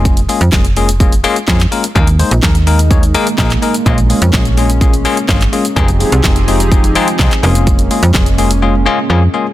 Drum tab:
HH |-xox-xox-xox-xox|-xox-xox-xox-xox|-xox-xox-xox-xox|-xox-xox-xox-xox|
SH |xxxxxxxxxxxxxxxx|xxxxxxxxxxxxxxxx|xxxxxxxxxxxxxxxx|xxxxxxxxxxxxxxxx|
CP |----x-------xx--|----x-------xx--|----x-------xx--|----x-------xx--|
SD |----o-------o---|----o-------o---|----o-------o---|----o-------o---|
BD |o---o---o---o---|o---o---o---o---|o---o---o---o---|o---o---o---o---|

HH |-xox-xox--------|
SH |xxxxxxxx--------|
CP |----x-----------|
SD |----o-----------|
BD |o---o-----------|